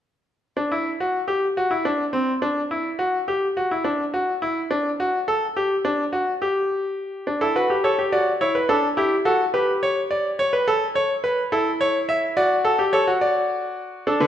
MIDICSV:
0, 0, Header, 1, 2, 480
1, 0, Start_track
1, 0, Tempo, 570885
1, 354, Time_signature, 12, 3, 24, 8
1, 6589, Tempo, 566038
1, 12045, End_track
2, 0, Start_track
2, 0, Title_t, "Grand piano"
2, 0, Program_c, 0, 0
2, 476, Note_on_c, 0, 62, 66
2, 594, Note_off_c, 0, 62, 0
2, 602, Note_on_c, 0, 64, 60
2, 750, Note_off_c, 0, 64, 0
2, 844, Note_on_c, 0, 66, 65
2, 990, Note_off_c, 0, 66, 0
2, 1074, Note_on_c, 0, 67, 69
2, 1222, Note_off_c, 0, 67, 0
2, 1321, Note_on_c, 0, 66, 66
2, 1434, Note_off_c, 0, 66, 0
2, 1435, Note_on_c, 0, 64, 63
2, 1551, Note_off_c, 0, 64, 0
2, 1556, Note_on_c, 0, 62, 66
2, 1704, Note_off_c, 0, 62, 0
2, 1790, Note_on_c, 0, 60, 67
2, 1940, Note_off_c, 0, 60, 0
2, 2034, Note_on_c, 0, 62, 67
2, 2183, Note_off_c, 0, 62, 0
2, 2278, Note_on_c, 0, 64, 62
2, 2426, Note_off_c, 0, 64, 0
2, 2512, Note_on_c, 0, 66, 67
2, 2662, Note_off_c, 0, 66, 0
2, 2757, Note_on_c, 0, 67, 65
2, 2906, Note_off_c, 0, 67, 0
2, 3000, Note_on_c, 0, 66, 65
2, 3116, Note_off_c, 0, 66, 0
2, 3122, Note_on_c, 0, 64, 57
2, 3232, Note_on_c, 0, 62, 64
2, 3237, Note_off_c, 0, 64, 0
2, 3383, Note_off_c, 0, 62, 0
2, 3478, Note_on_c, 0, 66, 65
2, 3626, Note_off_c, 0, 66, 0
2, 3717, Note_on_c, 0, 64, 65
2, 3865, Note_off_c, 0, 64, 0
2, 3956, Note_on_c, 0, 62, 68
2, 4104, Note_off_c, 0, 62, 0
2, 4203, Note_on_c, 0, 66, 68
2, 4349, Note_off_c, 0, 66, 0
2, 4438, Note_on_c, 0, 69, 69
2, 4586, Note_off_c, 0, 69, 0
2, 4679, Note_on_c, 0, 67, 73
2, 4827, Note_off_c, 0, 67, 0
2, 4916, Note_on_c, 0, 62, 72
2, 5064, Note_off_c, 0, 62, 0
2, 5150, Note_on_c, 0, 66, 65
2, 5300, Note_off_c, 0, 66, 0
2, 5395, Note_on_c, 0, 67, 69
2, 6092, Note_off_c, 0, 67, 0
2, 6112, Note_on_c, 0, 62, 60
2, 6229, Note_off_c, 0, 62, 0
2, 6232, Note_on_c, 0, 69, 69
2, 6233, Note_on_c, 0, 64, 55
2, 6349, Note_off_c, 0, 64, 0
2, 6349, Note_off_c, 0, 69, 0
2, 6354, Note_on_c, 0, 66, 58
2, 6355, Note_on_c, 0, 71, 67
2, 6469, Note_off_c, 0, 66, 0
2, 6473, Note_on_c, 0, 67, 57
2, 6502, Note_off_c, 0, 71, 0
2, 6589, Note_off_c, 0, 67, 0
2, 6591, Note_on_c, 0, 69, 61
2, 6594, Note_on_c, 0, 73, 67
2, 6708, Note_off_c, 0, 69, 0
2, 6715, Note_on_c, 0, 67, 58
2, 6742, Note_off_c, 0, 73, 0
2, 6830, Note_off_c, 0, 67, 0
2, 6833, Note_on_c, 0, 66, 62
2, 6834, Note_on_c, 0, 74, 71
2, 6981, Note_off_c, 0, 66, 0
2, 6982, Note_off_c, 0, 74, 0
2, 7074, Note_on_c, 0, 73, 69
2, 7076, Note_on_c, 0, 64, 60
2, 7189, Note_off_c, 0, 73, 0
2, 7193, Note_on_c, 0, 71, 67
2, 7223, Note_off_c, 0, 64, 0
2, 7308, Note_off_c, 0, 71, 0
2, 7311, Note_on_c, 0, 62, 62
2, 7313, Note_on_c, 0, 69, 75
2, 7460, Note_off_c, 0, 62, 0
2, 7461, Note_off_c, 0, 69, 0
2, 7550, Note_on_c, 0, 64, 63
2, 7551, Note_on_c, 0, 67, 73
2, 7699, Note_off_c, 0, 64, 0
2, 7700, Note_off_c, 0, 67, 0
2, 7790, Note_on_c, 0, 66, 68
2, 7791, Note_on_c, 0, 69, 71
2, 7940, Note_off_c, 0, 66, 0
2, 7941, Note_off_c, 0, 69, 0
2, 8031, Note_on_c, 0, 67, 55
2, 8031, Note_on_c, 0, 71, 70
2, 8182, Note_off_c, 0, 71, 0
2, 8277, Note_on_c, 0, 73, 73
2, 8425, Note_off_c, 0, 73, 0
2, 8513, Note_on_c, 0, 74, 67
2, 8663, Note_off_c, 0, 74, 0
2, 8755, Note_on_c, 0, 73, 74
2, 8872, Note_off_c, 0, 73, 0
2, 8872, Note_on_c, 0, 71, 71
2, 8966, Note_off_c, 0, 67, 0
2, 8990, Note_off_c, 0, 71, 0
2, 8997, Note_on_c, 0, 69, 79
2, 9146, Note_off_c, 0, 69, 0
2, 9233, Note_on_c, 0, 73, 72
2, 9383, Note_off_c, 0, 73, 0
2, 9473, Note_on_c, 0, 71, 71
2, 9623, Note_off_c, 0, 71, 0
2, 9713, Note_on_c, 0, 64, 63
2, 9715, Note_on_c, 0, 69, 76
2, 9864, Note_off_c, 0, 69, 0
2, 9955, Note_on_c, 0, 73, 78
2, 10103, Note_off_c, 0, 73, 0
2, 10193, Note_on_c, 0, 76, 77
2, 10341, Note_off_c, 0, 76, 0
2, 10409, Note_off_c, 0, 64, 0
2, 10431, Note_on_c, 0, 66, 72
2, 10431, Note_on_c, 0, 74, 82
2, 10580, Note_off_c, 0, 74, 0
2, 10667, Note_on_c, 0, 69, 80
2, 10780, Note_off_c, 0, 66, 0
2, 10787, Note_on_c, 0, 67, 69
2, 10818, Note_off_c, 0, 69, 0
2, 10906, Note_off_c, 0, 67, 0
2, 10906, Note_on_c, 0, 73, 74
2, 10910, Note_on_c, 0, 69, 66
2, 11028, Note_off_c, 0, 69, 0
2, 11031, Note_on_c, 0, 66, 68
2, 11058, Note_off_c, 0, 73, 0
2, 11149, Note_on_c, 0, 74, 75
2, 11847, Note_off_c, 0, 66, 0
2, 11849, Note_off_c, 0, 74, 0
2, 11874, Note_on_c, 0, 69, 63
2, 11875, Note_on_c, 0, 62, 64
2, 11988, Note_on_c, 0, 50, 80
2, 11989, Note_off_c, 0, 69, 0
2, 11991, Note_on_c, 0, 71, 65
2, 12045, Note_off_c, 0, 50, 0
2, 12045, Note_off_c, 0, 62, 0
2, 12045, Note_off_c, 0, 71, 0
2, 12045, End_track
0, 0, End_of_file